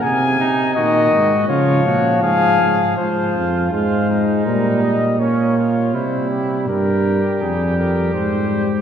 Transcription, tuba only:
X:1
M:4/4
L:1/8
Q:1/4=81
K:Db
V:1 name="Tuba" clef=bass
C, C, B,, A,, D, B,, A,, A,, | [K:Fm] A,, F,, A,,2 B,,4 | C,2 G,,2 F,,2 A,,2 |]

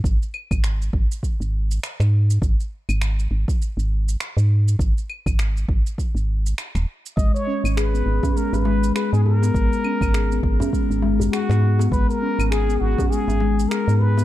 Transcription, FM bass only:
X:1
M:4/4
L:1/16
Q:"Swing 16ths" 1/4=101
K:G#m
V:1 name="FM bass" clef=bass
G,,, z2 G,,,3 G,,, z2 G,,,3 z G,,3 | G,,, z2 G,,,3 G,,, z2 G,,,3 z G,,3 | G,,, z2 G,,,3 G,,, z2 G,,,3 z D,,, z2 | G,,, z2 G,,,3 G,,, z2 G,,,3 z G,,3 |
G,,, z2 G,,,3 G,,, z2 G,,,3 z G,,3 | G,,, z2 G,,,3 G,,, z2 G,,,3 z G,,3 |]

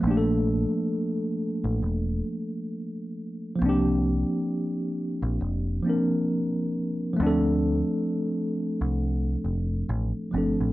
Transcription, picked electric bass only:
X:1
M:4/4
L:1/16
Q:"Swing 16ths" 1/4=67
K:Dm
V:1 name="Picked electric bass" clef=bass
B,,,3 z4 A,,, E,,,2 z6 | C,,3 z4 B,,, F,,,2 z6 | D,,3 z4 C,,3 F,,,2 A,,, z G,,, A,,, |]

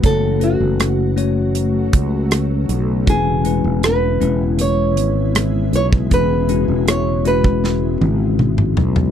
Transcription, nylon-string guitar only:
X:1
M:4/4
L:1/8
Q:1/4=79
K:C#phr
V:1 name="Nylon-string guitar"
A F4 z3 | G2 B2 c3 c | B2 c B4 z |]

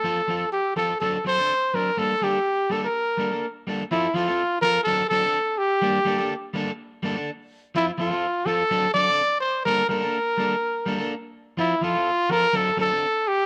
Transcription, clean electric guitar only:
X:1
M:4/4
L:1/16
Q:"Swing 16ths" 1/4=125
K:Gdor
V:1 name="Clean electric guitar"
[F,CFA] z [F,CFA] z3 [F,CFA] z [^F,CDA] z [F,CA] [CDA] z2 [F,CD] z | [G,B,D] z [G,B,DA] z3 [G,B,DA] z3 [G,B,DA] [B,DA] z2 [G,B,DA] z | [F,CFA] z [F,CFA] [CFA] z2 [F,CFA] z [^F,CDA] z [F,CDA] [CDA] z4 | [G,B,D] z [G,B,DA] [B,DA] z2 [G,B,DA] z3 [G,B,DA] [DA] z4 |
[F,CF] z [F,CA] [CFA] z2 [F,CFA] z [^F,CDA] z [F,CDA] [CDA] z4 | [G,B,DA] z [G,B,DA] [B,DA] z2 [G,B,DA] z3 [G,B,DA] [B,DA] z4 | [F,CF] z [F,FA] [CFA] z2 [F,CFA] z [^F,CDA] z [F,CDA] [CDA] z4 |]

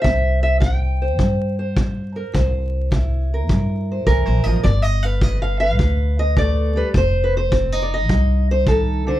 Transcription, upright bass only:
X:1
M:4/4
L:1/16
Q:"Swing" 1/4=104
K:Gdor
V:1 name="Upright bass" clef=bass
C,,8 G,,8 | C,,8 G,,4 C,, B,,, A,,, G,,, | G,,,8 D,,8 | F,,,8 C,,8 |]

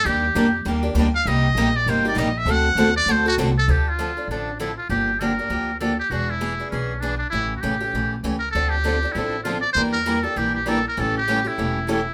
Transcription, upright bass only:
X:1
M:4/4
L:1/8
Q:"Swing" 1/4=198
K:Dphr
V:1 name="Upright bass" clef=bass
E,,2 F,,2 E,,2 D,,2 | C,,2 B,,,2 G,,,2 B,,,2 | D,,2 E,,2 D,,2 C,,2 | [K:Dm] D,,4 A,,,4 |
G,,,4 D,,4 | E,,,4 =B,,,4 | A,,,2 A,,,2 B,,,2 ^C,,2 | D,,4 A,,,4 |
E,,4 B,,,4 | A,,,4 E,,,4 |]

